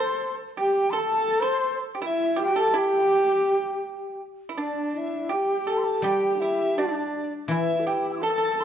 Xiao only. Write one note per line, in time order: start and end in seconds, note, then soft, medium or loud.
0.00 0.35 C5 medium
0.58 0.96 G4 medium
0.94 1.42 A4 medium
1.40 1.78 C5 loud
1.96 2.05 G4 medium
2.04 2.40 E4 medium
2.39 2.57 G4 medium
2.56 2.77 A4 medium
2.75 4.21 G4 medium
4.57 4.96 D4 medium
4.94 5.33 E4 medium
5.32 5.69 G4 medium
5.67 6.04 A4 medium
6.05 6.36 G4 medium
6.36 6.41 D4 soft
6.36 6.78 E4 medium
6.76 7.31 D4 medium
7.49 7.81 E4 medium
7.80 7.88 A4 soft
7.86 8.23 G4 medium
8.22 8.64 A4 medium